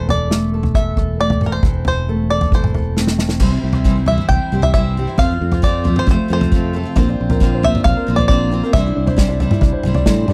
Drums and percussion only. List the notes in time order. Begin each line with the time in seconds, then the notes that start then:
0.09 floor tom
0.31 snare
0.63 floor tom
0.75 kick
0.97 kick, floor tom
1.30 floor tom
1.41 mid tom
1.63 kick, floor tom
1.85 floor tom
2.41 floor tom
2.52 kick
2.64 mid tom
2.75 floor tom
2.97 snare
3.07 snare
3.19 snare
3.29 snare
3.40 kick, floor tom, crash
3.73 floor tom
3.85 kick
4.06 floor tom
4.18 mid tom
4.29 kick, floor tom
4.62 floor tom
4.74 kick
5.18 kick, floor tom
5.52 floor tom
5.63 kick
5.85 floor tom
5.96 mid tom
6.07 kick, floor tom
6.41 floor tom
6.52 kick
6.96 kick, floor tom
7.30 floor tom
7.41 kick
7.63 floor tom
7.75 mid tom
7.85 kick, floor tom
8.18 floor tom
8.29 kick
8.74 kick, floor tom
9.07 floor tom
9.18 kick, snare
9.40 floor tom
9.51 mid tom
9.61 kick, floor tom
9.83 mid tom
9.95 floor tom
10.06 kick, snare
10.28 mid tom